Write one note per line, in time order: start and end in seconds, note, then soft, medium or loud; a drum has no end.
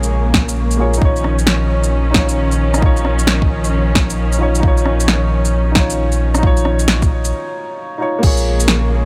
0.00 1.00 A#1 medium
0.00 0.97 C#3 medium
0.00 0.97 G#3 medium
0.00 0.77 A#3 medium
0.00 0.97 A#3 medium
0.00 0.79 F4 medium
0.00 0.80 G#4 medium
0.00 0.81 C#5 loud
0.00 shaker medium
0.34 kick loud
0.34 cross-stick soft
0.34 snare loud
0.49 shaker medium
0.71 shaker soft
0.77 0.99 A#3 medium
0.77 1.00 F4 medium
0.77 1.00 G#4 medium
0.77 1.01 C#5 medium
0.94 2.09 D#4 medium
0.94 shaker medium
1.01 7.33 A#1 medium
1.01 7.29 D#3 medium
1.01 7.29 F3 medium
1.01 7.29 C#4 medium
1.01 2.12 F4 medium
1.01 2.14 C#5 medium
1.01 kick loud
1.16 shaker soft
1.24 cross-stick soft
1.39 shaker medium
1.47 snare loud
1.84 shaker medium
2.11 2.76 D#4 medium
2.11 snare loud
2.15 2.80 F4 medium
2.15 2.82 C#5 medium
2.15 kick loud
2.29 shaker medium
2.52 shaker soft
2.74 4.36 D#4 medium
2.74 cross-stick medium
2.74 shaker medium
2.82 4.38 F4 medium
2.82 kick loud
2.86 4.40 C#5 loud
2.97 shaker soft
3.05 cross-stick soft
3.19 shaker medium
3.27 snare loud
3.42 kick loud
3.64 shaker soft
3.95 kick loud
3.95 cross-stick soft
3.95 snare loud
4.10 shaker medium
4.32 shaker soft
4.38 4.58 D#4 medium
4.38 4.61 F4 medium
4.43 4.62 C#5 medium
4.55 shaker medium
4.60 5.70 D#4 medium
4.60 kick loud
4.64 5.74 F4 medium
4.64 5.76 C#5 medium
4.77 shaker soft
4.86 cross-stick medium
5.00 shaker medium
5.08 snare medium
5.45 shaker medium
5.72 6.37 D#4 medium
5.72 kick loud
5.72 snare loud
5.76 6.41 F4 medium
5.76 6.43 C#5 medium
5.90 shaker medium
6.12 shaker soft
6.35 7.96 D#4 medium
6.35 cross-stick medium
6.35 shaker medium
6.42 7.99 F4 medium
6.42 kick loud
6.47 8.01 C#5 loud
6.57 shaker soft
6.65 cross-stick medium
6.79 shaker medium
6.88 snare loud
7.02 kick loud
7.02 shaker soft
7.25 shaker medium
7.98 8.20 D#4 medium
7.98 8.20 F4 medium
8.02 8.22 C#5 medium
8.19 9.05 A#3 medium
8.19 9.05 F4 medium
8.23 9.05 A#1 medium
8.23 9.05 C#3 medium
8.23 9.05 G#3 medium
8.23 9.05 A#3 medium
8.23 9.05 G#4 medium
8.23 9.05 C#5 medium
8.23 kick loud
8.23 crash loud
8.37 shaker soft
8.60 shaker medium
8.68 snare loud